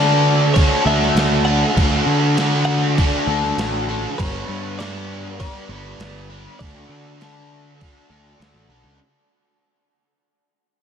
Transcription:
0.00 0.54 D3 medium
0.00 0.60 D3 medium
0.00 0.55 D4 medium
0.00 0.55 F#4 medium
0.00 0.56 A4 medium
0.00 0.54 D5 medium
0.54 1.16 D3 medium
0.54 0.87 D4 loud
0.54 0.85 F#4 loud
0.54 0.85 A4 loud
0.54 0.86 C#5 medium
0.54 kick loud
0.54 crash medium
0.85 1.09 D2 medium
0.85 1.48 D4 medium
0.85 1.46 F#4 medium
0.85 1.45 A4 medium
0.85 1.44 E5 loud
1.02 snare soft
1.15 1.63 D2 medium
1.15 snare loud
1.15 crash medium
1.45 1.77 D4 medium
1.45 1.77 F#4 medium
1.45 1.78 A4 medium
1.45 2.64 F#5 loud
1.76 2.00 D2 loud
1.76 2.36 D3 medium
1.76 2.38 D4 loud
1.76 2.38 F#4 loud
1.76 2.39 A4 loud
1.76 kick loud
1.76 crash medium
2.06 3.01 D3 medium
2.37 2.96 D3 medium
2.37 2.98 D4 medium
2.37 2.98 F#4 loud
2.37 2.99 A4 medium
2.37 snare loud
2.37 crash medium
2.65 2.95 F#5 loud
2.95 3.58 D3 medium
2.95 3.29 D4 loud
2.95 3.28 F#4 loud
2.95 3.83 D5 medium
2.95 kick loud
2.95 crash medium
3.00 3.27 A4 loud
3.27 3.51 D2 loud
3.27 3.90 D4 medium
3.27 3.89 F#4 medium
3.27 3.88 A4 medium
3.45 snare soft
3.58 4.05 A1 loud
3.58 snare loud
3.58 crash medium
3.88 4.19 D4 medium
3.88 4.17 F#4 medium
3.88 4.20 A4 medium
4.18 4.42 G1 loud
4.18 4.78 G3 loud
4.18 4.80 B3 loud
4.18 4.80 D4 loud
4.18 4.80 B4 loud
4.18 4.78 C#5 loud
4.18 kick loud
4.18 crash medium
4.48 5.43 G2 medium
4.79 5.38 G3 medium
4.79 5.40 B3 medium
4.79 5.40 D4 medium
4.79 5.40 B4 medium
4.79 5.39 D5 loud
4.79 snare loud
4.79 crash medium
5.40 6.00 G3 loud
5.40 5.69 B3 loud
5.40 5.71 D4 loud
5.40 5.68 B4 loud
5.40 6.58 D5 loud
5.40 kick loud
5.40 crash medium
5.69 5.93 G1 loud
5.69 6.29 B3 medium
5.69 6.32 D4 medium
5.69 6.28 B4 medium
5.99 6.46 G1 loud
5.99 snare loud
5.99 crash medium
6.29 6.58 B3 medium
6.29 6.60 D4 medium
6.29 6.58 B4 medium
6.59 6.84 D2 loud
6.59 7.18 D3 medium
6.59 7.19 D4 loud
6.59 7.20 F#4 loud
6.59 7.21 A4 loud
6.59 8.36 D5 medium
6.59 kick loud
6.59 crash medium
6.89 7.84 D3 medium
7.20 7.79 D3 medium
7.20 7.80 D4 medium
7.20 7.80 F#4 medium
7.20 7.81 A4 medium
7.20 snare loud
7.20 crash medium
7.80 8.40 D3 loud
7.80 8.11 D4 loud
7.80 8.10 F#4 medium
7.80 8.08 A4 loud
7.80 kick loud
7.80 crash medium
8.10 8.34 D2 medium
8.10 8.71 D4 medium
8.10 8.70 F#4 medium
8.10 8.69 A4 medium
8.40 8.52 D2 medium
8.40 snare loud
8.40 crash medium
8.54 8.68 A1 medium
8.69 8.83 B1 medium
8.69 9.00 D4 medium
8.69 8.99 F#4 medium
8.69 8.99 A4 medium
8.84 8.98 C#2 medium

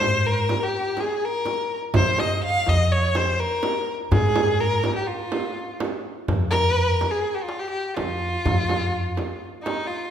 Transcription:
0.00 0.50 G#2 medium
0.00 0.28 C5 loud
0.00 darbuka tek medium
0.00 frame drum medium
0.27 0.65 A#4 medium
0.49 darbuka tek medium
0.49 frame drum medium
0.63 1.01 G4 medium
0.97 1.27 G#4 medium
0.97 darbuka tek medium
0.97 frame drum medium
1.25 1.78 A#4 loud
1.45 darbuka tek medium
1.45 frame drum medium
1.82 darbuka ka soft
1.94 2.13 F2 loud
1.94 2.21 C5 loud
1.94 frame drum medium
1.94 darbuka dum medium
2.18 2.43 D#5 medium
2.18 darbuka tek medium
2.18 frame drum medium
2.44 2.70 F5 loud
2.66 3.41 F2 medium
2.66 2.93 D#5 medium
2.66 darbuka tek medium
2.66 frame drum medium
2.92 3.18 C#5 loud
3.15 3.41 C5 medium
3.15 darbuka tek medium
3.15 frame drum medium
3.40 3.94 A#4 medium
3.63 darbuka tek medium
3.63 frame drum medium
4.00 darbuka ka soft
4.11 4.85 G#2 loud
4.11 4.62 G#4 loud
4.11 darbuka dum medium
4.11 frame drum medium
4.36 darbuka tek medium
4.36 frame drum medium
4.48 darbuka ka soft
4.60 4.95 A#4 loud
4.60 darbuka ka soft
4.84 darbuka tek medium
4.84 frame drum medium
4.96 5.08 G4 medium
5.07 5.80 F4 medium
5.32 frame drum medium
5.80 darbuka tek medium
5.80 frame drum medium
6.28 7.02 F2 medium
6.28 frame drum medium
6.28 darbuka dum medium
6.50 7.12 A#4 loud
6.50 darbuka tek medium
6.50 frame drum medium
6.77 darbuka ka soft
7.01 darbuka tek medium
7.01 frame drum medium
7.11 7.36 G#4 medium
7.35 7.44 G4 medium
7.43 7.61 F4 medium
7.49 darbuka tek medium
7.59 7.69 G4 medium
7.70 7.88 G4 medium
7.88 7.96 G4 medium
7.94 8.34 F2 medium
7.94 9.44 F4 medium
7.94 darbuka tek medium
7.94 frame drum medium
8.22 darbuka ka soft
8.34 darbuka ka soft
8.45 9.19 F2 medium
8.45 frame drum medium
8.45 darbuka dum medium
8.69 darbuka tek medium
8.69 frame drum medium
8.95 darbuka ka soft
9.17 darbuka tek medium
9.17 frame drum medium
9.63 9.88 D#4 medium
9.63 darbuka tek medium
9.63 frame drum medium
9.87 10.10 F4 medium

